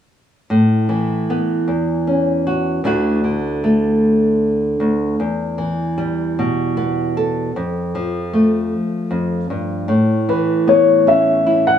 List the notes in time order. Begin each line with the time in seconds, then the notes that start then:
0.50 A2
0.89 E3
1.30 B3
1.68 E2
2.07 C#4
2.47 F#4
2.84 D2 D3 A3 E4 F#4
3.24 D3
3.64 A3
4.80 D2
5.20 E2
5.58 E3
5.98 G3
6.39 B2
6.77 B3
7.17 A4
7.56 F2
7.95 F3
8.33 A3
9.11 F2
9.50 G2
9.88 A2
10.29 E3 B4
10.67 B3 C#5
11.07 C#4 E5
11.47 E4
11.67 F#5